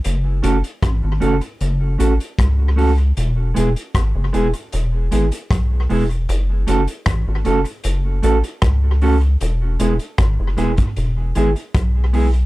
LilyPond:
<<
  \new Staff \with { instrumentName = "Clean electric guitar" } { \time 4/4 \key fis \minor \tempo 4 = 77 r8 <a cis' fis' a'>8 r8 <a cis' fis' a'>8 r8 <a cis' fis' a'>8 r8 <a cis' fis' a'>8 | r8 <gis b e' gis'>8 r8 <gis b e' gis'>8 r8 <gis b e' gis'>8 r8 <gis b e' gis'>8 | r8 <a cis' fis' a'>8 r8 <a cis' fis' a'>8 r8 <a cis' fis' a'>8 r8 <a cis' fis' a'>8 | r8 <gis b e' gis'>8 r8 <gis b e' gis'>8 r8 <gis b e' gis'>8 r8 <gis b e' gis'>8 | }
  \new Staff \with { instrumentName = "Analog synth bass" } { \clef bass \time 4/4 \key fis \minor fis,,8 fis,,16 r16 a,,16 gis,,16 fis,,16 r16 fis,,8 a,,16 r16 cis,4 | e,,8 e,,16 r16 gis,,16 fis,,16 e,,16 r16 e,,8 gis,,16 r16 b,,8 e,,8 | fis,,8 fis,,16 r16 a,,16 gis,,16 fis,,16 r16 fis,,8 a,,16 r16 cis,4 | e,,8 e,,16 r16 gis,,16 fis,,16 e,,16 r16 e,,8 gis,,16 r16 b,,4 | }
  \new DrumStaff \with { instrumentName = "Drums" } \drummode { \time 4/4 hh8 hh16 hh16 <hh bd ss>8 hh16 hh16 hh8 hh16 hh16 <hh bd ss>8 hho16 hh16 | hh8 hh16 hh16 <hh bd ss>8 hh16 hh16 hh8 hh16 hh16 <hh bd ss>8 hho16 hh16 | hh8 hh16 hh16 <hh bd ss>8 hh16 hh16 hh8 hh16 hh16 <hh bd ss>8 hho16 hh16 | hh8 hh16 hh16 <hh bd ss>8 <hh ss>16 <hh bd>16 hh8 hh16 hh16 <hh bd ss>8 hho16 hh16 | }
>>